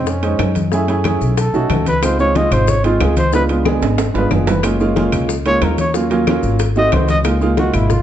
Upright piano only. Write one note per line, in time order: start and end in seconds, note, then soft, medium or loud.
0.23 0.57 G#3 medium
0.23 0.58 C#4 medium
0.23 0.58 D#4 medium
0.23 0.57 C5 medium
0.72 0.84 A3 medium
0.72 0.84 C#4 medium
0.72 0.84 E4 medium
0.72 0.84 G#4 medium
0.88 1.00 A3 medium
0.88 1.00 C#4 medium
0.88 1.00 E4 medium
0.88 1.00 G#4 loud
1.05 1.37 A3 medium
1.05 1.38 C#4 medium
1.05 1.38 E4 medium
1.05 1.38 G#4 medium
1.54 1.88 A3 medium
1.54 1.88 C#4 medium
1.54 1.89 D#4 medium
1.54 1.89 F#4 medium
2.02 2.14 G#3 medium
2.02 2.14 C4 medium
2.02 2.15 D#4 medium
2.02 2.15 F4 medium
2.19 2.30 G#3 medium
2.19 2.31 C4 medium
2.19 2.31 D#4 medium
2.19 2.31 F4 medium
2.35 2.70 G#3 medium
2.35 2.70 C4 medium
2.35 2.70 D#4 medium
2.35 2.70 F4 medium
2.84 3.18 G#3 medium
2.84 3.19 C4 medium
2.84 3.19 D#4 medium
2.84 3.19 F4 medium
3.32 3.44 G#3 medium
3.32 3.45 B3 medium
3.32 3.45 D4 medium
3.32 3.45 F4 medium
3.48 3.60 G#3 medium
3.48 3.61 B3 medium
3.48 3.61 D4 medium
3.48 3.61 F4 medium
3.65 4.00 G#3 medium
3.65 4.00 B3 medium
3.65 4.00 D4 medium
3.65 4.00 G#4 medium
4.14 4.49 G#3 medium
4.14 4.49 B3 medium
4.14 4.49 D4 medium
4.14 4.49 F4 medium
4.63 4.75 G#3 medium
4.63 4.75 A#3 medium
4.63 4.75 C#4 medium
4.63 4.76 F4 medium
4.80 4.91 G#3 medium
4.80 4.92 A#3 medium
4.80 4.92 C#4 medium
4.80 4.92 F4 loud
4.96 5.31 G#3 medium
4.96 5.31 A#3 medium
4.96 5.31 C#4 medium
4.96 5.31 F4 medium
5.46 5.80 G#3 medium
5.46 5.80 A#3 medium
5.46 5.80 C#4 medium
5.46 5.80 F4 medium
5.94 6.06 F#3 medium
5.94 6.06 A#3 medium
5.94 6.06 C#4 medium
5.94 6.06 F4 medium
6.10 6.22 F#3 medium
6.10 6.22 A#3 medium
6.10 6.22 C#4 medium
6.10 6.23 F4 loud
6.27 6.60 F#3 medium
6.27 6.60 A#3 medium
6.27 6.60 C#4 medium
6.27 6.60 F4 medium
6.76 7.10 A3 medium
6.76 7.10 C4 medium
6.76 7.11 D#4 medium
6.76 7.11 F#4 medium
7.25 7.36 G#3 medium
7.25 7.36 A#3 medium
7.25 7.37 D#4 medium
7.25 7.37 F4 medium
7.41 7.52 G#3 medium
7.41 7.53 A#3 medium
7.41 7.53 D#4 medium
7.41 7.53 F4 loud
7.57 7.92 G#3 medium
7.57 7.92 A#3 medium
7.57 7.92 D#4 medium
7.57 7.92 F4 medium